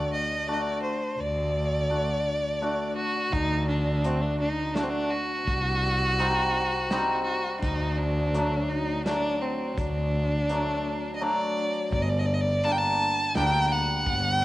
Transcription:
Already playing: D2 A3 D4 F#4 D5
0.13 D#5
0.48 A3 D4 F#4 D5
0.54 D#5
0.62 D5
0.83 C5
1.19 D2 D5
1.90 A3 D4 F#4
2.61 A3 D4 F#4
2.96 F#4
3.32 D2 D#4, kick, closed hi-hat
3.68 D4
4.04 A3 C4 D4 F#4, closed hi-hat
4.22 D4
4.40 D#4
4.74 A3 D4 F#4, snare, closed hi-hat
4.83 C4
4.90 D4
5.11 F#4
5.48 C2, kick, closed hi-hat
6.19 G3 C4 D#4, closed hi-hat
6.91 G3 C4 D#4, snare, closed hi-hat
7.24 F#4
7.61 D2 D#4, kick, closed hi-hat
7.97 D4
8.34 F#3 A3 D4, closed hi-hat
8.69 D#4
9.05 F#3 A3 D4, snare, closed hi-hat
9.41 C4
9.78 D2 D4, kick, closed hi-hat
10.49 F#3 A3 D4, closed hi-hat
11.16 D#5
11.21 F#3 A3 D4 D5
11.92 G1 D5, kick, ride
12.02 D#5
12.10 D5
12.19 D#5
12.26 D5
12.34 D#5
12.41 D5
12.64 G3 A#3 D4 A5, ride
12.72 G5
12.78 A5
13.35 D2 G3 A#3 D4 G5, snare, ride
13.72 F#5
14.06 G1, kick, ride
14.37 G5

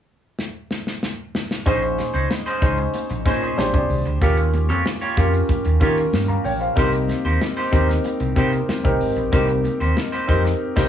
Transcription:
0.39 snare
0.71 snare
0.87 snare
1.03 snare
1.35 snare
1.51 snare
1.66 A#1 C#4 D#4 G#4 C5, kick, closed hi-hat, muted conga
1.82 muted clean electric guitar stroke, closed hi-hat
1.98 muted clean electric guitar stroke, snare, closed hi-hat, muted conga, high conga
2.14 C#2 C#4 D#4 G#4 C5, closed hi-hat
2.30 muted clean electric guitar stroke, snare, muted conga
2.46 C#4 D#4 G#4 C5, closed hi-hat
2.61 C#2 C#4 D#4 G#4 C5, kick, closed hi-hat, muted conga
2.78 closed hi-hat
2.94 muted clean electric guitar stroke, closed hi-hat, muted conga, high conga
3.09 A#1, muted clean electric guitar stroke, closed hi-hat
3.25 A#2 C#4 D#4 G#4 C5, kick, closed hi-hat
3.42 C#4 D#4 G#4 C5, closed hi-hat
3.57 A#1 D4 G4 G#4 C5, muted clean electric guitar stroke, snare, muted conga, high conga
3.73 C2 D4 G4 G#4 C5, muted clean electric guitar stroke, kick, closed hi-hat, high conga, low conga
3.90 C2, open hi-hat, high conga, low conga
4.05 D2, muted clean electric guitar stroke, closed hi-hat
4.21 D#2 A#3 C#4 F4 G4 A#4 C#5, kick, closed hi-hat, muted conga
4.37 muted clean electric guitar stroke, closed hi-hat
4.54 muted clean electric guitar stroke, closed hi-hat, muted conga, high conga
4.69 F2 A#3 F4 G4 C#5, closed hi-hat
4.86 muted clean electric guitar stroke, snare
5.01 A#3 F4 G4 C#5, closed hi-hat
5.17 F2 A#3 C#4 F4 G4 A#4 C#5, kick, closed hi-hat, muted conga
5.33 muted clean electric guitar stroke, closed hi-hat
5.49 muted clean electric guitar stroke, kick, closed hi-hat, muted conga, high conga
5.65 D#2, muted clean electric guitar stroke, closed hi-hat
5.80 D#3 A#3 C#4 F4 G4 A#4 C#5, kick, closed hi-hat, muted conga
5.97 muted clean electric guitar stroke, closed hi-hat
6.13 G2, muted clean electric guitar stroke, snare, muted conga, high conga
6.28 F5 A#5, muted clean electric guitar stroke, closed hi-hat, high conga, low conga
6.45 A#1 C#5 G5, open hi-hat, muted conga, high conga, low conga
6.60 C5 F5, muted clean electric guitar stroke, closed hi-hat
6.76 C2 A#3 C4 D#4 G4 A#4 C5, kick, closed hi-hat, muted conga
6.93 muted clean electric guitar stroke, closed hi-hat
7.08 muted clean electric guitar stroke, snare, closed hi-hat, muted conga, high conga
7.25 D#2 A#3 D#4 G4 C5, closed hi-hat
7.41 muted clean electric guitar stroke, snare
7.57 A#3 D#4 G4 C5, closed hi-hat
7.72 D#2 A#3 C4 D#4 G4 A#4 C5, kick, closed hi-hat
7.89 muted clean electric guitar stroke, snare, closed hi-hat
8.04 muted clean electric guitar stroke, closed hi-hat, high conga
8.20 C2, muted clean electric guitar stroke, closed hi-hat
8.36 C3 A#3 C4 D#4 G4 A#4 C5, kick, closed hi-hat
8.53 muted clean electric guitar stroke, closed hi-hat
8.68 muted clean electric guitar stroke, snare, high conga
8.84 C2 C4 D#4 G4 A#4, muted clean electric guitar stroke, kick, closed hi-hat, high conga, low conga
9.00 G#1, open hi-hat, high conga, low conga
9.16 A#1, muted clean electric guitar stroke, closed hi-hat
9.32 C2 A#3 C4 D#4 G4 A#4 C5, kick, closed hi-hat, muted conga
9.48 muted clean electric guitar stroke, closed hi-hat
9.64 muted clean electric guitar stroke, closed hi-hat, muted conga, high conga
9.80 D#2 A#3 D#4 G4 C5, closed hi-hat
9.96 muted clean electric guitar stroke, snare, muted conga
10.12 A#3 D#4 G4 C5, closed hi-hat
10.28 F2 A#3 C4 D#4 G4 A#4 C5, kick, closed hi-hat
10.44 muted clean electric guitar stroke, snare, closed hi-hat
10.76 C2 A#3 C4 D#4 G4 A#4 C5, kick, snare, crash

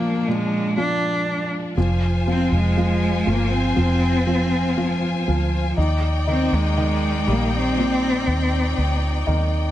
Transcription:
Already playing: A#2 F3 G#3 A#3 D4
0.28 A#2 G#3
0.77 F3 D4
1.76 F1 F3 F4 C5 G#5
2.28 F3 C4
2.52 F1 G#3
2.77 F3
3.27 G1 F3 A#3
3.54 C4
3.76 F1 F3
4.27 F3
4.78 F3
5.28 D2 F3
5.77 D#2 D#4 D5 G5
6.27 D#3 C4
6.52 D#2 G#3
6.77 D#3
7.27 A#1 G3 A#3
7.56 C4
7.77 A#2
8.27 D#2
8.78 D2
9.27 D#2 D#3

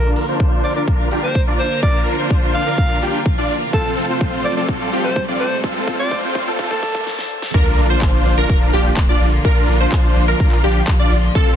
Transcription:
Already playing: D3 A#3 D4 F4 A#4, riser
0.16 open hi-hat
0.28 D4 F4 C5
0.40 kick
0.64 D5, open hi-hat
0.76 D4 F4 A#4 D5
0.88 D4 F4 A#4, kick
1.11 D4 F4 G4, open hi-hat
1.23 C5
1.35 kick
1.47 D4 F4 D5
1.59 C5, open hi-hat
1.83 D4 F4 A#4 D5, kick
2.07 open hi-hat
2.19 D4 F4 C5
2.30 kick
2.54 F5, open hi-hat
2.66 D4 F4 A#4
2.78 D4 F4 A#4, kick
3.02 D4 F4 G4, open hi-hat
3.26 kick
3.38 D4 F4 D5
3.49 open hi-hat
3.73 C3 A3 C4 F4 A4, kick
3.97 open hi-hat
4.09 C4 F4 C5
4.21 kick
4.45 D5, open hi-hat
4.57 C4 F4 A4 D5
4.68 C4 F4 A4, kick
4.92 C4 F4 G4, open hi-hat
5.04 C5
5.16 kick
5.28 C4 F4 D5
5.40 C5, open hi-hat
5.64 C4 F4 A4, kick
5.88 kick, open hi-hat
6.00 C4 F4 C5 D5
6.11 kick
6.35 kick, open hi-hat
6.47 C4 F4 A4
6.59 C4 F4 A4, kick
6.71 A4, kick
6.83 kick, open hi-hat
6.95 kick
7.07 snare
7.19 snare
7.42 snare
7.54 D3 F3 A#3 D4 F4 A#4, kick, crash, sub drop
7.78 A#1, open hi-hat
7.90 D4 F4 C5
8.02 kick, clap
8.26 A#1, open hi-hat
8.38 D4 F4 A#4
8.49 D4 F4 A#4, kick
8.73 A#1 D4 F4 G4, open hi-hat
8.97 kick, clap
9.09 D4 F4 D5
9.21 A#1, open hi-hat
9.45 D4 F4 A#4, kick
9.69 A#1, open hi-hat
9.80 D4 F4 C5
9.92 kick, clap
10.16 A#1, open hi-hat
10.28 D4 F4 A#4
10.40 D4 F4 A#4, kick
10.52 clap
10.64 A#1 D4 F4 G4, open hi-hat
10.88 kick, clap
10.99 D4 F4 D5
11.11 A#1, open hi-hat
11.35 C3 A3 C4 F4 A4, kick

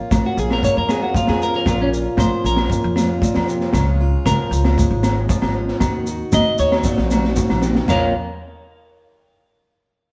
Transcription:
Already playing: A#3 C#4 F4
0.11 A#1, kick, snare, high conga, low agogo, shekere
0.26 F#4
0.37 A#1 C#4 G#4, shekere
0.51 A#4, snare, low agogo
0.63 F2 A#3 C#5, kick, muted conga, high conga, shekere
0.77 F2 A#4
0.89 F4 G#4, snare, muted conga, low agogo, shekere
1.03 F#4
1.14 F3 F4, kick, snare, high conga, shekere
1.27 F2 G#4, snare, low agogo
1.41 C#4 A#4, shekere
1.53 A#4, snare
1.66 A#1 A#2 A#3 C#4 F4, kick, snare, muted conga, low agogo, shekere
1.82 C#4
1.94 F4, shekere
2.17 A#1 F3 C5, kick, snare, high conga, low agogo, shekere
2.44 A#1 C#4 A#4, muted conga, shekere
2.57 snare, low agogo
2.70 F2 A#3, kick, muted conga, shekere
2.84 F2
2.96 F4, snare, muted conga, high conga, low conga, low agogo, shekere
3.22 A#2, kick, high conga, shekere
3.34 F2, snare, low agogo
3.48 C3, shekere
3.61 snare
3.73 C#2 C#3 G#3 C#4, kick, snare, low agogo, shekere
3.77 F4
4.01 F4
4.26 C#2 F3 A#4, kick, snare, high conga, low agogo, shekere
4.51 C#2 C#4, muted conga, shekere
4.65 snare, low agogo
4.78 G#2 G#3, kick, muted conga, high conga, shekere
4.91 G#1
5.03 snare, muted conga, low agogo, shekere
5.29 F3, kick, snare, high conga, shekere
5.42 G#1, snare, low agogo
5.56 C#4
5.68 snare
5.80 D#2 D#3 D#4 F#4, kick, snare, low agogo, shekere
6.07 F#4, shekere
6.32 D#2 D#5, kick, snare, high conga, low agogo, shekere
6.58 D#2 F#4 C#5, muted conga, shekere
6.72 snare, low agogo
6.83 A#2 D#4, kick, snare, shekere
6.98 A#1, snare
7.11 F#4, snare, muted conga, high conga, low conga, low agogo, shekere
7.24 snare
7.36 C#3, kick, snare, high conga, shekere
7.50 A#1, snare, high conga, low agogo
7.62 C3, snare, low conga, shekere
7.75 snare, low conga
7.88 A#1 A#2 A#3 C#4 F4 A#4 C#5 F5, muted steel-string acoustic guitar stroke, snare, floor tom, crash, muted conga, low agogo, shekere

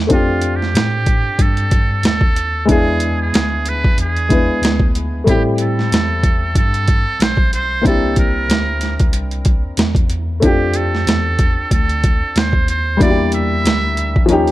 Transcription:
0.07 F2 A3 C4 D4, kick, closed hi-hat
0.12 F4 G4
0.42 closed hi-hat
0.56 G4
0.62 snare
0.74 A2, snare, closed hi-hat
1.06 kick, closed hi-hat
1.39 G2 A4, kick, closed hi-hat
1.57 closed hi-hat
1.71 kick, closed hi-hat
2.03 D#2 A4, snare, closed hi-hat
2.21 kick
2.36 closed hi-hat
2.65 E2 G#3 B3 D4, kick, closed hi-hat
2.70 E4 G#4
3.00 closed hi-hat
3.22 G#4
3.33 D2, snare, closed hi-hat
3.66 B4, closed hi-hat
3.84 kick
3.98 E2 G#4, closed hi-hat
4.17 closed hi-hat
4.29 G#3 B3 D4 E4 B4, kick, closed hi-hat
4.49 D2
4.62 D2, snare, closed hi-hat
4.80 kick
4.95 closed hi-hat
5.24 A2 G3 A3 C4, kick, closed hi-hat
5.29 E4 G4
5.58 A4, closed hi-hat
5.79 snare
5.92 E2, snare, closed hi-hat
6.23 kick, closed hi-hat
6.55 G2 A4, kick, closed hi-hat
6.74 closed hi-hat
6.88 kick, closed hi-hat
7.07 B1
7.20 B1 C5, snare, closed hi-hat
7.37 kick
7.53 C5, closed hi-hat
7.82 C2 A#3 C4 D4, kick
7.86 E4 G4 A4, closed hi-hat
8.16 A#4, kick, closed hi-hat
8.49 D2, snare, closed hi-hat
8.81 snare, closed hi-hat
9.00 kick, closed hi-hat
9.13 C2, closed hi-hat
9.31 closed hi-hat
9.45 kick, closed hi-hat
9.65 E2
9.77 E2, snare, closed hi-hat
9.95 kick, closed hi-hat
10.10 closed hi-hat
10.40 F2 A3 C4 D4, kick, closed hi-hat
10.44 F4 G4
10.74 A4, closed hi-hat
10.95 snare
11.07 E2, snare, closed hi-hat
11.39 kick, closed hi-hat
11.58 D2
11.71 D2 A4, kick, closed hi-hat
11.89 closed hi-hat
12.04 kick, closed hi-hat
12.22 D#2
12.36 D#2 C5, snare, closed hi-hat
12.53 kick
12.68 C5, closed hi-hat
12.97 E2 G3 A#3 D4, kick, closed hi-hat
13.02 E4 F#4 D5
13.10 G4
13.32 E5, closed hi-hat
13.65 D2, snare, closed hi-hat
13.97 closed hi-hat
14.16 D#2, kick
14.26 D#2 F3 A#3 C#4, closed hi-hat
14.31 D#4 G4
14.47 closed hi-hat

